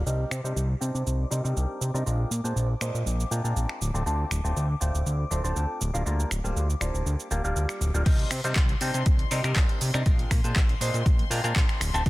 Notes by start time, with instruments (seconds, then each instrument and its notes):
0.06 analog synth bass C2, clav G3 C4 D4 D#4 A#4, string section D6, shaker
0.31 analog synth bass C3, finger snap, shaker
0.44 analog synth bass C3, clav G3 C4 D4 D#4 C5, shaker
0.56 analog synth bass C2, shaker
0.81 analog synth bass C3, clav G3 C4 D4 D#4 C5, shaker
0.95 analog synth bass C3, shaker
1.07 analog synth bass C2, shaker
1.31 analog synth bass C3, clav G3 C4 D4 D#4 A#4, shaker
1.44 analog synth bass C3, clav G3 C4 D4 D#4 A#4, shaker
1.57 analog synth bass C2, shaker
1.81 analog synth bass C3, shaker
1.94 analog synth bass C3, clav G3 C4 D4 D#4 A#4, shaker
2.06 analog synth bass A#1, clav G#3 C4 D4 F4 A#4, shaker
2.31 analog synth bass A#2, shaker
2.44 analog synth bass A#2, clav G#3 C4 D4 F4 C5, shaker
2.56 analog synth bass A#1, shaker
2.81 analog synth bass A#2, clav G#3 C4 D4 F4 C5, finger snap, shaker
2.94 analog synth bass A#2, shaker
3.06 analog synth bass A#1, shaker
3.20 shaker
3.31 analog synth bass A#2, clav G#3 C4 D4 F4 A#4, shaker
3.44 analog synth bass A#2, clav G#3 C4 D4 F4 A#4, shaker
3.56 analog synth bass A#1, shaker
3.69 finger snap
3.81 analog synth bass D1, shaker
3.94 analog synth bass D1, clav A3 C4 D4 F4 A4, shaker
4.06 analog synth bass D2, clav A3 C4 D4 F4 A4, shaker
4.31 analog synth bass D1, finger snap, shaker
4.44 analog synth bass D1, clav A3 C4 D4 F4 C5, shaker
4.56 analog synth bass D2, shaker
4.81 analog synth bass D1, clav A3 C4 D4 F4 C5, shaker
4.95 analog synth bass D1, shaker
5.06 analog synth bass D2, shaker
5.31 analog synth bass D1, clav A3 C4 D4 F4 A4, shaker
5.44 analog synth bass D1, clav A3 C4 D4 F4 A4, shaker
5.56 analog synth bass D2, shaker
5.81 analog synth bass D1, shaker
5.94 analog synth bass D1, clav G3 A#3 D4 F4 A#4, shaker
6.06 analog synth bass D2, clav G3 A#3 D4 F4 A#4, shaker
6.20 shaker
6.31 analog synth bass D1, finger snap, shaker
6.44 analog synth bass D1, clav G3 A#3 D4 F4 C5, shaker
6.56 analog synth bass D2, shaker
6.70 shaker
6.81 analog synth bass D1, clav G3 A#3 D4 F4 C5, finger snap, shaker
6.94 analog synth bass D1, shaker
7.06 analog synth bass D2, shaker
7.20 shaker
7.31 analog synth bass D1, clav G3 A#3 D4 F4 A#4, shaker
7.44 analog synth bass D1, clav G3 A#3 D4 F4 A#4, shaker
7.56 analog synth bass D2, shaker
7.69 finger snap, shaker
7.81 analog synth bass D1, shaker
7.94 analog synth bass D1, clav G3 A#3 D4 F4 A#4, shaker
8.06 analog synth bass C2, clav C4 D4 D#4 A#4, string section C6, kick, closed hi-hat, crash, shaker
8.19 closed hi-hat
8.31 analog synth bass C3, finger snap, open hi-hat, shaker
8.44 analog synth bass C3, clav G3 C4 D4 D#4 C5, closed hi-hat, shaker
8.56 analog synth bass C2, kick, clap, closed hi-hat, shaker
8.69 closed hi-hat
8.81 analog synth bass C3, clav G3 C4 D4 D#4 C5, open hi-hat, shaker
8.94 analog synth bass C3, closed hi-hat, shaker
9.06 analog synth bass C2, kick, closed hi-hat, shaker
9.19 closed hi-hat
9.31 analog synth bass C3, clav G3 C4 D4 D#4 A#4, open hi-hat, shaker
9.44 analog synth bass C3, clav G3 C4 D4 D#4 A#4, finger snap, closed hi-hat, shaker
9.56 analog synth bass C2, kick, clap, closed hi-hat, shaker
9.69 closed hi-hat
9.81 analog synth bass C3, open hi-hat, shaker
9.94 analog synth bass C3, clav G3 C4 D4 D#4 A#4, finger snap, closed hi-hat, shaker
10.06 analog synth bass A#1, clav A#4, kick, closed hi-hat, shaker
10.19 closed hi-hat
10.31 analog synth bass A#2, finger snap, kick, open hi-hat, shaker
10.44 analog synth bass A#2, clav G#3 C4 D4 F4 C5, closed hi-hat, shaker
10.56 analog synth bass A#1, kick, clap, closed hi-hat, shaker
10.69 closed hi-hat
10.81 analog synth bass A#2, clav G#3 C4 D4 F4 C5, open hi-hat, shaker
10.94 analog synth bass A#2, closed hi-hat, shaker
11.06 analog synth bass A#1, kick, closed hi-hat, shaker
11.19 closed hi-hat
11.30 analog synth bass A#2, clav G#3 C4 D4 F4 A#4, open hi-hat, shaker
11.44 analog synth bass A#2, clav G#3 C4 D4 F4 A#4, closed hi-hat, shaker
11.56 analog synth bass A#1, kick, clap, closed hi-hat, shaker
11.69 finger snap, closed hi-hat
11.81 analog synth bass D1, finger snap, open hi-hat, shaker
11.94 analog synth bass D1, clav A3 C4 D4 F4 A4, closed hi-hat, shaker
12.06 analog synth bass D2, kick, closed hi-hat